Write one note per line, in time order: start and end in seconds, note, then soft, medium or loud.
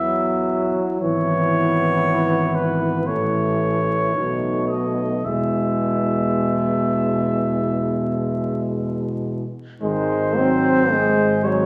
0.00 0.71 E2 soft
0.00 0.98 F#3 medium
0.00 0.71 B3 medium
0.00 0.98 E4 medium
0.00 0.75 E5 medium
1.01 3.10 G#1 medium
1.01 3.04 E3 medium
1.01 3.09 B3 medium
1.01 3.04 E4 medium
1.01 2.57 C#5 medium
2.55 3.08 B4 medium
3.07 4.13 A1 soft
3.07 4.16 E3 soft
3.07 4.13 A3 medium
3.07 4.12 E4 soft
3.07 4.67 C#5 medium
4.13 5.25 B1 soft
4.13 5.25 B2 soft
4.13 5.27 A3 soft
4.13 5.08 D#4 soft
4.68 5.26 D#5 soft
5.24 9.48 E2 soft
5.24 9.45 B2 soft
5.24 9.49 G#3 soft
5.24 9.45 E4 soft
5.24 8.68 E5 medium
9.81 11.66 G#1 medium
9.81 10.38 D#3 medium
9.81 10.39 G#3 medium
9.81 10.87 D#4 soft
9.81 11.46 C5 medium
10.36 10.91 F#3 medium
10.36 10.93 C4 medium
10.91 11.66 G#3 medium
10.91 11.48 G#3 medium
10.91 11.66 C4 medium
11.45 11.66 F#3 medium
11.45 11.66 C#5 medium